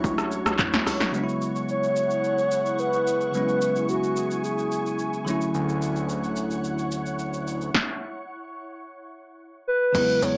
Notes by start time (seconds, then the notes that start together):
Already playing: F#3 A3 C#4 D4 E4 F#4 C#5 C#6
0.04 C#2, kick, shaker
0.18 cross-stick, shaker
0.32 shaker
0.46 C#2, cross-stick, shaker
0.59 kick, clap, mid tom, shaker
0.73 D2, snare, shaker
0.86 C#2, cross-stick, open hi-hat, shaker
1.00 B1, snare, shaker
1.12 C#3 F#3 G#3 E4 G#4 F#5 C#6, shaker
1.16 B3 D4
1.24 E4
1.29 shaker
1.42 shaker
1.56 shaker
1.69 C#5, shaker
1.83 shaker
1.96 shaker
2.10 shaker
2.24 shaker
2.38 shaker
2.51 shaker
2.66 shaker
2.79 B4, shaker
2.93 shaker
3.07 shaker
3.21 shaker
3.32 C#3 F#3 G#3 B4 G#5, shaker
3.36 B3 C#4
3.49 shaker
3.62 shaker
3.76 shaker
3.89 F#4, shaker
4.04 shaker
4.16 shaker
4.31 shaker
4.44 G#4, shaker
4.58 shaker
4.72 shaker
4.86 shaker
4.99 shaker
5.13 shaker
5.25 D3 F#3 A3 C#5 F#5, shaker
5.29 C#4 E4
5.41 shaker
5.54 D2, shaker
5.69 shaker
5.82 shaker
5.96 shaker
6.09 shaker
6.24 shaker
6.36 shaker
6.51 shaker
6.64 shaker
6.78 shaker
6.92 shaker
7.06 shaker
7.19 shaker
7.34 shaker
7.47 shaker
7.61 shaker
7.74 kick, snare
9.68 B4
9.93 E2 C#3 F#3 G#3 E4 G#4 F#5 C#6, kick, crash, shaker
9.97 B3 E4
10.09 shaker
10.22 E2 C#5, shaker